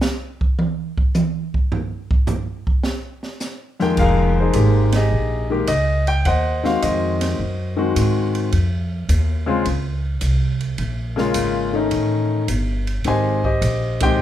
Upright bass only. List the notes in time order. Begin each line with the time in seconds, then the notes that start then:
3.97 F1
4.54 G#1
5.11 A#1
5.68 C#2
6.25 D#2
6.82 F2
7.39 F#2
7.96 G#2
8.52 F2
9.09 D#2
9.66 C#2
10.22 C2
10.78 A#1
11.35 G#1
11.91 A1
12.48 G1
13.05 G#1
13.61 A#1